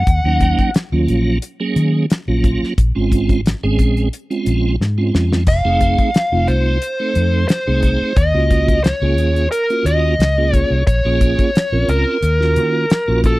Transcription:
Already playing: F#5
0.07 D#2, kick, closed hi-hat
0.24 D#2 F#3 A#3 C#4 D#4
0.40 kick, closed hi-hat
0.58 kick, closed hi-hat
0.74 snare, closed hi-hat
0.92 D#2 F#3 A#3 C#4 F4
1.08 A#1, closed hi-hat
1.42 closed hi-hat
1.60 F#3 A#3 C#4 G#4
1.76 D#3, closed hi-hat
2.10 snare, closed hi-hat
2.28 A#1 F#3 A#3 C#4 F4
2.44 kick, closed hi-hat
2.62 muted fingered electric bass stroke, snare
2.78 A#1, kick, closed hi-hat
2.95 G#1 G#3 C4 C#4 F4
3.12 kick, closed hi-hat
3.29 kick, closed hi-hat
3.46 snare, closed hi-hat
3.63 G#1 G#3 C4 C#4 G#4
3.79 A#1, kick, closed hi-hat
3.97 closed hi-hat
4.13 closed hi-hat
4.30 G#3 C4 C#4 F4, closed hi-hat
4.46 A#1, closed hi-hat
4.81 G#2, snare
4.98 G#3 C4 C#4 F4
5.14 F2, snare
5.33 snare
5.47 F1 F5, kick, closed hi-hat, splash
5.65 F1 A3 C4 D#4 G#4
5.81 kick, closed hi-hat
5.98 kick, closed hi-hat
6.14 snare, closed hi-hat
6.32 F1 A3 C4 D#4 F4
6.48 C2 C5, closed hi-hat
6.82 closed hi-hat
7.00 A3 C4 D#4 A4
7.15 F2, closed hi-hat
7.48 C5, snare, closed hi-hat
7.67 C2 A3 C4 D#4 G#4
7.83 kick, closed hi-hat
8.16 D#2 D#5, kick, closed hi-hat
8.34 C#2 A#3 C#4 F4 F#4
8.51 kick, closed hi-hat
8.68 kick, closed hi-hat
8.84 C#5, snare, closed hi-hat
9.02 C#2 A#3 C#4 F4 G#4
9.17 D#2, closed hi-hat
9.36 closed hi-hat
9.51 A#4, closed hi-hat
9.70 A#3 C#4 F4 F#4, closed hi-hat
9.85 D#2 D#5, closed hi-hat
10.19 C#2, snare, closed hi-hat
10.38 A#3 C#4 F4 G#4
10.54 C#5, kick, closed hi-hat
10.70 C2
10.87 A#1 C#5, kick, closed hi-hat
11.05 A#1 A#3 C#4 F4 G#4
11.21 kick, closed hi-hat
11.39 kick, closed hi-hat
11.55 snare, closed hi-hat
11.72 A#1 C4 C#4 F4 A#4
11.88 C#2 A#4, closed hi-hat
12.22 D#2, closed hi-hat
12.40 A#3 C#4 F4 F#4, snare
12.56 D#3, closed hi-hat
12.90 snare, closed hi-hat
13.08 A#1 A#3 C#4 F4 F#4
13.24 A4, kick, closed hi-hat

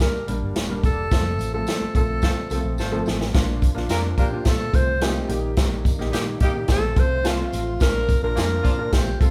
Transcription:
Already playing: G3 A#3 D4 G4 A#4
0.00 A#4, kick, snare, closed hi-hat
0.27 A#1 G3 A#3 D4 A#4, closed hi-hat, tambourine
0.42 G1
0.56 D#1, snare, closed hi-hat, tambourine
0.69 G3 A#3 D4 A#4
0.83 E1 A4, kick, closed hi-hat, tambourine
1.11 F1 F3 A3 C4 F4 A4, kick, snare, closed hi-hat, tambourine
1.39 A1, closed hi-hat, tambourine
1.54 F3 A3 C4 A4
1.67 snare, closed hi-hat, tambourine
1.81 muted fingered electric bass stroke
1.94 A#1 F3 A3 C4 A4, kick, closed hi-hat, tambourine
2.22 A3 C4 F4 A4, kick, snare, closed hi-hat, tambourine
2.50 C2 F3 A3 C4 F4 A4, closed hi-hat, tambourine
2.64 A#1
2.78 G#1 A3 C4 F4 A4, snare, tambourine
2.92 F3 A3 C4 A4
3.06 A1, snare, tambourine
3.21 snare
3.33 A#1 F3 A#3 D4 F4, kick, snare, closed hi-hat, tambourine
3.62 kick, closed hi-hat, tambourine
3.75 A#1 A#3 D4 F4, snare
3.89 F2 A#3 D4 F4 A#4, snare, closed hi-hat, tambourine
4.18 A#2 A#3 D4 F4 G4 A#4, kick, closed hi-hat, tambourine
4.31 A#3 D4 F4
4.45 A#2 A3 C4 F4 A4, kick, snare, closed hi-hat, tambourine
4.73 C2 A3 C4 F4 C5, kick, closed hi-hat, tambourine
5.01 G3 A3 A#3 C4 D#4 F4 G4, snare, closed hi-hat, tambourine
5.28 A#1 D#3 G3 A#3 D#4 G4, closed hi-hat, tambourine
5.57 kick, snare, closed hi-hat, tambourine
5.85 kick, closed hi-hat, tambourine
5.99 A#1 A#3 D#4 G4, snare
6.12 A#2 G3 A#3 D#4 G4, snare, closed hi-hat, tambourine
6.40 A#2 G3 A#3 D#4 G4, kick, closed hi-hat, tambourine
6.45 G4
6.53 A#3 D#4 G4
6.68 A#1 F3 A3 C4 F4 A4, kick, snare, closed hi-hat, tambourine
6.96 C2 C4 F4 A4 C5, kick, closed hi-hat, tambourine
7.23 F3 A3 C4 F4 A4, snare, closed hi-hat, tambourine
7.28 F4
7.53 A1, closed hi-hat, tambourine
7.80 A#1 A#3 D4 F4 A#4, kick, snare, closed hi-hat, tambourine
8.09 kick, closed hi-hat, tambourine
8.23 A#1 D4 F4 A#4
8.35 F2 F3 A#3 D4 F4, snare, closed hi-hat, tambourine
8.63 A#2 F3 A#3 D4 F4, kick, closed hi-hat, tambourine
8.78 D4 F4 A#4
8.92 A#1 F3 A3 C4 F4 G4, kick, snare, closed hi-hat, tambourine
9.20 C2 C4 F4 A4, kick, closed hi-hat, tambourine

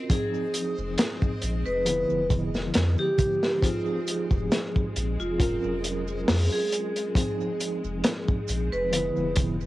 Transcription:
Already playing: C4 C#4 F4 F#4 A#4 D#5
0.09 F3 G#3 C4 D#4 G#4, kick, closed hi-hat, maracas
0.34 maracas
0.54 closed hi-hat, maracas
0.78 F1, maracas
0.98 snare, closed hi-hat, maracas
1.22 kick, maracas
1.42 A#1, closed hi-hat, maracas
1.66 F1 B4, maracas
1.85 D3 F3 B3, closed hi-hat, maracas
1.89 E4
2.10 F1, maracas
2.30 kick, closed hi-hat, low conga, maracas
2.54 snare, maracas
2.74 F2, snare, closed hi-hat, maracas
2.98 G4, maracas
3.18 kick, closed hi-hat, low conga, maracas
3.43 snare, maracas
3.62 F3 C4 D#4 F4 G#4, kick, closed hi-hat, maracas
3.86 maracas
4.07 closed hi-hat, maracas
4.31 F1, kick, maracas
4.51 snare, closed hi-hat, maracas
4.76 kick, maracas
4.96 A#1, closed hi-hat, maracas
5.19 F1 F4, maracas
5.38 F#3 C#4 F4, kick, closed hi-hat, maracas
5.43 A#4
5.63 F1, maracas
5.84 closed hi-hat, maracas
6.07 maracas
6.28 F2, snare, open hi-hat, maracas
6.52 G#4, maracas
6.72 closed hi-hat, maracas
6.96 closed hi-hat, maracas
7.15 F3 C4 D#4 G#4, kick, closed hi-hat, maracas
7.19 G#4
7.41 maracas
7.60 closed hi-hat, maracas
7.84 F1, maracas
8.04 snare, closed hi-hat, maracas
8.28 kick, maracas
8.48 A#1, closed hi-hat, maracas
8.72 F1 B4, maracas
8.91 D3 F3 B3, closed hi-hat, maracas
8.95 E4
9.16 F1, maracas
9.36 kick, closed hi-hat, low conga, maracas
9.61 maracas

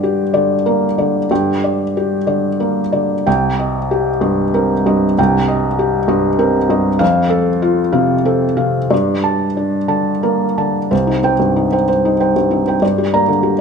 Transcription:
Already playing: G2 D3 D5 G5
0.03 G4
0.34 D3 D5
0.66 A#3 A#4
0.98 D3 D5
1.31 G2 G5
1.64 D5
1.97 G4
2.27 D3 D5
2.60 A#3 A#4
2.92 D3 D5
3.27 C2 G5
3.59 D#5
3.91 G4
4.21 G2 D#5
4.54 C4 A#4
4.86 G2 D#5
5.18 C2 G5
5.48 D#5
5.79 G4
6.08 G2 D#5
6.39 C4 A#4
6.69 G2 D#5
6.99 F2 F5
7.30 A4
7.62 F4
7.93 C3 F5
8.25 C4 A4
8.57 C3 F5
8.90 G2 D5
9.24 A5
9.57 D4
9.88 D3 A5
10.23 A#3 A#4
10.58 D3 A5
10.91 C2 C5
11.07 D#4
11.23 C4 C5 G5
11.39 G2
11.56 D#4
11.72 C5 G5
11.88 C5
12.05 D#4
12.20 C5 G5
12.36 G2
12.51 C4 D#4
12.67 C5 G5
12.82 G2 D5
12.98 G4
13.13 A#3 D5 A#5
13.28 D3
13.43 G4

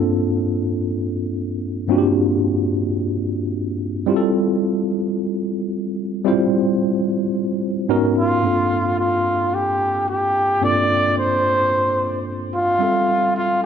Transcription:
Already playing: G2 A#3 C4 D4 F4 A4
1.88 G2 A#3 C4 D4 F4 F#4
1.98 G4
4.06 G3 C4 E4 F4 G4
4.16 A4
6.24 G3 C4 E4 F4 C5
7.89 G#2 B3 C#4 D#4 F#4 A#4
8.18 F4
8.42 G2 A#3 C4 D4 F4 A4
9.00 F4
9.54 G4
10.09 G4
10.61 G2 A#3 C4 D4 F4 A4 D5
11.18 C5
12.55 F4
12.79 G3 C4 F4 A4 E5
13.36 F4

